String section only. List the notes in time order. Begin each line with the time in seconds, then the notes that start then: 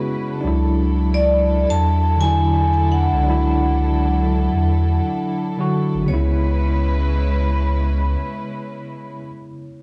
Already playing: G#3 C#4 E4 B4
0.42 F#3 D4 E4 A4
6.08 G#3 C#4 E4 B4